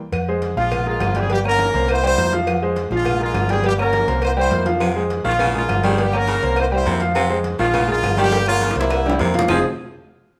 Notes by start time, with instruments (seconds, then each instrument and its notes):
0.12 fingered electric bass F2, cowbell, high conga, low agogo, claves
0.28 grand piano G#3 G#4 C5, high conga
0.42 cowbell, high conga, low timbale, low agogo
0.57 fingered electric bass A#1, grand piano F3 F4 F5, horn section G#3 F4, high conga, low agogo
0.71 cowbell, high conga, low conga, low agogo, claves
0.86 grand piano G#3 G#4 A#4, horn section G#3 F4, high conga
1.00 fingered electric bass G1, cowbell, high conga, low timbale, low agogo, claves
1.15 grand piano G3 G4 G5, horn section C4 G#4, cowbell, high conga, low agogo
1.29 grand piano G3 G4 G5, horn section A#3 G4, cowbell, high conga
1.44 grand piano A#3 A#4 C#5, horn section C#4 A#4, high conga, low agogo, claves
1.59 cowbell, high conga, low timbale, low agogo
1.74 fingered electric bass C2, grand piano A#3 A#4 C5, cowbell
1.88 horn section E4 C5, cowbell, high conga, low agogo, claves
2.03 grand piano G3 G4 G5, horn section E4 C5, high conga, low agogo
2.17 fingered electric bass F2, grand piano A#3 A#4 C5, cowbell, low timbale
2.32 grand piano F3 F4 F5, cowbell, high conga
2.47 cowbell, high conga, low agogo, claves
2.62 grand piano G#3 G#4 C5, high conga
2.76 cowbell, high conga, low timbale, low agogo
2.90 fingered electric bass A#1, grand piano F3 F4 F5, horn section G#3 F4, high conga, low agogo
3.05 cowbell, high conga, low conga, low agogo, claves
3.20 grand piano G#3 G#4 A#4, horn section G#3 F4, high conga
3.34 fingered electric bass G1, cowbell, high conga, low timbale, low agogo, claves
3.49 grand piano G3 G4 G5, horn section C4 G#4, cowbell, high conga, low agogo
3.64 grand piano G3 G4 G5, horn section A#3 G4, cowbell, high conga
3.78 grand piano A#3 A#4 C#5, horn section C#4 A#4, high conga, low agogo, claves
3.92 cowbell, high conga, low timbale, low agogo
4.07 fingered electric bass C2, grand piano A#3 A#4 C5, cowbell
4.22 horn section E4 C5, cowbell, high conga, low agogo, claves
4.37 grand piano G3 G4 G5, horn section E4 C5, high conga, low agogo
4.51 fingered electric bass F2, grand piano A#3 A#4 C5, cowbell, high conga, low timbale
4.65 grand piano F3 F4 F5, cowbell, high conga
4.80 baritone saxophone C3, cowbell, high conga, low agogo, claves
4.95 grand piano G#3 G#4 C5, high conga
5.10 cowbell, high conga, low timbale, low agogo
5.24 fingered electric bass A#1, baritone saxophone D#3, grand piano F3 F4 F5, horn section G#3 F4, high conga, low agogo
5.39 baritone saxophone C#3, cowbell, high conga, low conga, low agogo, claves
5.54 grand piano G#3 G#4 A#4, horn section G#3 F4, high conga, low conga
5.69 fingered electric bass G1, cowbell, high conga, low timbale, low agogo, claves
5.83 baritone saxophone D#3, grand piano G3 G4 G5, horn section C4 G#4, cowbell, high conga, low agogo
5.98 grand piano G3 G4 G5, horn section A#3 G4, cowbell, high conga
6.13 grand piano A#3 A#4 C#5, horn section C#4 A#4, high conga, low agogo, claves
6.27 baritone saxophone C#3, cowbell, high conga, low timbale, low agogo
6.43 fingered electric bass C2, grand piano A#3 A#4 C5, cowbell
6.56 horn section E4 C5, cowbell, low agogo, claves
6.70 grand piano G3 G4 G5, horn section E4 C5, high conga, low agogo
6.85 fingered electric bass F2, baritone saxophone C3, grand piano A#3 A#4 C5, cowbell, low timbale
7.00 grand piano F3 F4 F5, cowbell, high conga
7.15 baritone saxophone C3, cowbell, high conga, low agogo, claves
7.30 grand piano G#3 G#4 C5, high conga
7.44 cowbell, high conga, low timbale, low agogo
7.59 fingered electric bass A#1, baritone saxophone D#3, grand piano F3 F4 F5, horn section G#3 F4, high conga, low agogo
7.73 baritone saxophone C#3, cowbell, high conga, low conga, low agogo, claves
7.88 grand piano G#3 G#4 A#4, horn section G#3 F4, high conga, low conga
8.03 fingered electric bass G1, cowbell, high conga, low timbale, low agogo, claves
8.17 baritone saxophone D#3, grand piano G3 G4 G5, horn section A#3 G4, cowbell, high conga, low agogo
8.31 grand piano G3 G4 G5, cowbell, high bongo, high conga
8.46 horn section G#3 F4, grand piano A#3 A#4 C#5, high conga, low agogo, claves
8.61 baritone saxophone C#3, cowbell, high conga, low timbale, low agogo
8.71 low bongo
8.76 fingered electric bass C2, horn section G3 E4, grand piano A#3 A#4 C5, cowbell
8.81 low bongo
8.90 cowbell, low bongo, high conga, low agogo, claves
9.06 grand piano G3 G4 G5, low bongo, high conga, high timbale, low agogo
9.19 fingered electric bass F2, baritone saxophone C3, grand piano A#3 A#4 C5, cowbell, low bongo
9.34 grand piano F3 F4 F5, cowbell, low conga, low timbale
9.39 low bongo
9.48 fingered electric bass F1, baritone saxophone F3, grand piano F3 C4 D#4 F4 G#4 C5, horn section G#4, low bongo, low conga, low timbale, claves